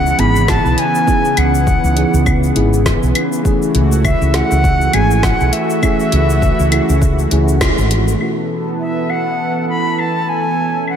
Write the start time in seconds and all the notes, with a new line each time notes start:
Already playing: C#2 C#3 E3 B3 D#4 E4 G#4 F#5
0.06 shaker
0.18 G#1 B3 D#4 E4 G#4 B5, closed hi-hat
0.36 shaker
0.48 A5, kick, snare, claves, shaker
0.65 B1, shaker
0.78 G#5, closed hi-hat
0.95 shaker
1.07 B3 D#4 E4 G#4, kick, shaker
1.25 shaker
1.37 C#2 F#5, closed hi-hat, claves
1.54 shaker
1.67 kick, shaker
1.84 C#2, shaker
1.96 B3 D#4 E4 G#4, closed hi-hat
2.14 C#2, shaker
2.26 kick, claves, shaker
2.43 shaker
2.55 G#1 B3 D#4 E4 G#4, closed hi-hat
2.73 shaker
2.86 kick, snare, shaker
3.03 B1, shaker
3.15 closed hi-hat, claves
3.32 shaker
3.43 E3 A3 C#4 E4 F#4 G#4, kick, shaker
3.62 shaker
3.75 C#2, closed hi-hat
3.92 shaker
4.05 E5, kick, claves, shaker
4.22 C#2, shaker
4.34 A3 C#4 E4 G#4 F#5, snare, closed hi-hat
4.51 C#2, shaker
4.64 kick, shaker
4.81 shaker
4.93 G#1 A3 C#4 E4 G#4 G#5, closed hi-hat, claves
5.11 shaker
5.23 F#5, kick, snare, shaker
5.40 B1, shaker
5.53 E5, closed hi-hat
5.70 shaker
5.82 A3 C#4 E4 G#4, kick, claves, shaker
6.00 shaker
6.12 C#2, closed hi-hat
6.30 shaker
6.42 kick, shaker
6.59 C#2, shaker
6.71 A3 C#4 E4 G#4, closed hi-hat, claves
6.89 C#2, shaker
7.02 kick, shaker
7.19 shaker
7.31 C#2 A3 C#4 E4 G#4, closed hi-hat
7.48 shaker
7.61 kick, snare, claves, shaker
7.78 G#1, shaker
7.91 closed hi-hat
8.08 shaker
8.19 B2 E3 A3 B3 C#4 E4 F#4 A4, claves, shaker
8.38 shaker
8.67 shaker
8.80 E5, shaker
8.97 shaker
9.10 F#5, claves
9.27 shaker
9.39 shaker
9.56 shaker
9.69 B5
9.86 shaker
9.98 A5, claves, shaker
10.16 shaker
10.29 G#5
10.45 shaker
10.58 C#4, shaker
10.75 shaker
10.87 F#5, claves